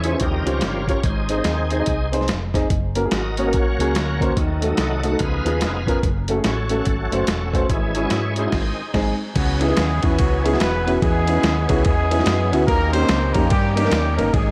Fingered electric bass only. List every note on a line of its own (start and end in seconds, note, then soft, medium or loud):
0.00 0.14 E2 medium
0.21 0.43 D#2 loud
0.46 0.59 C#2 medium
0.62 0.97 G1 medium
1.03 1.39 G#1 loud
1.45 1.81 D#2 medium
1.87 2.30 C2 medium
2.28 2.64 F1 medium
2.70 3.06 F#1 loud
3.12 3.54 G#1 medium
3.54 3.76 A#1 medium
3.79 3.92 C#2 medium
3.94 4.30 D2 medium
4.37 4.72 D#2 loud
4.78 5.13 C2 medium
5.20 5.42 C#2 loud
5.45 5.62 D#2 medium
5.61 5.96 F1 medium
6.03 6.38 F#1 loud
6.44 6.80 A1 medium
6.87 7.08 G#1 medium
7.12 7.25 F#1 medium
7.28 7.63 E1 medium
7.70 8.05 G#1 loud
8.11 8.46 G#2 medium
8.53 8.70 G#1 medium
8.94 9.12 G#1 medium
9.36 9.71 C#2 loud
9.78 10.00 D#2 medium
10.03 10.17 E2 medium
10.20 10.55 C#2 medium
10.61 10.96 E1 medium
11.02 11.37 E2 loud
11.43 11.65 D#2 medium
11.70 11.86 C#2 medium
11.86 12.21 E2 loud
12.26 12.52 F#2 medium
12.53 12.66 D2 medium
12.68 13.03 D#2 loud
13.09 13.31 C#2 medium
13.35 13.49 F2 medium
13.51 13.86 G2 loud
13.91 14.19 D#2 medium
14.17 14.31 G1 medium
14.33 14.51 G#1 loud